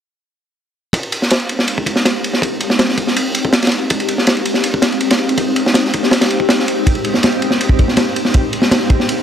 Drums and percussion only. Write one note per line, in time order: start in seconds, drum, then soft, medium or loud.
0.93 kick loud
0.93 ride medium
1.03 ride soft
1.12 ride medium
1.22 snare soft
1.30 snare loud
1.30 ride medium
1.40 ride soft
1.49 ride medium
1.59 snare soft
1.68 ride medium
1.78 kick medium
1.86 kick medium
1.86 ride medium
1.96 snare soft
2.05 snare loud
2.05 ride medium
2.24 ride medium
2.33 snare soft
2.42 kick loud
2.42 ride medium
2.60 ride medium
2.70 snare medium
2.79 snare loud
2.79 ride medium
2.89 snare soft
2.97 kick medium
2.97 ride medium
3.07 snare soft
3.16 ride medium
3.35 ride medium
3.45 kick medium
3.53 snare loud
3.53 ride medium
3.62 snare medium
3.62 ride medium
3.67 snare medium
3.67 ride medium
3.72 ride medium
3.90 kick medium
3.90 ride medium
4.00 ride soft
4.08 ride medium
4.18 snare soft
4.27 snare loud
4.27 ride medium
4.37 ride soft
4.45 ride medium
4.54 snare soft
4.64 ride medium
4.74 kick medium
4.82 snare medium
4.82 ride medium
4.92 ride soft
5.00 ride medium
5.11 snare medium
5.11 ride medium
5.19 ride soft
5.29 ride medium
5.38 kick loud
5.38 ride medium
5.56 ride medium
5.66 snare medium
5.74 snare loud
5.74 ride medium
5.84 snare soft
5.94 kick medium
5.94 ride medium
6.03 snare soft
6.11 snare loud
6.11 ride medium
6.21 snare loud
6.21 ride medium
6.30 ride medium
6.40 kick medium
6.49 snare loud
6.49 ride medium
6.59 snare soft
6.68 ride medium
6.87 kick medium
6.87 ride medium
6.95 ride soft
7.04 ride medium
7.14 snare soft
7.23 snare loud
7.23 ride medium
7.32 ride soft
7.42 ride medium
7.51 snare soft
7.61 ride medium
7.69 kick medium
7.79 kick loud
7.79 ride medium
7.88 snare soft
7.97 snare loud
7.97 ride medium
8.16 ride medium
8.25 snare soft
8.34 kick loud
8.34 ride medium
8.53 ride medium
8.62 snare medium
8.71 snare loud
8.71 ride medium
8.80 snare soft
8.90 kick medium
8.90 ride medium
9.00 snare soft
9.09 ride medium